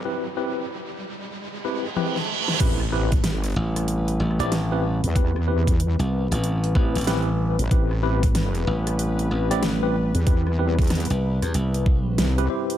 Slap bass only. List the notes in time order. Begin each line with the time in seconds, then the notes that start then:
3.56 A1
4.20 A1
4.39 A1
5.99 C2
6.31 A1
6.75 A1
6.96 A1
8.67 A1
9.31 A1
9.51 A1
11.10 C2
11.42 E2
11.54 C2
11.98 B1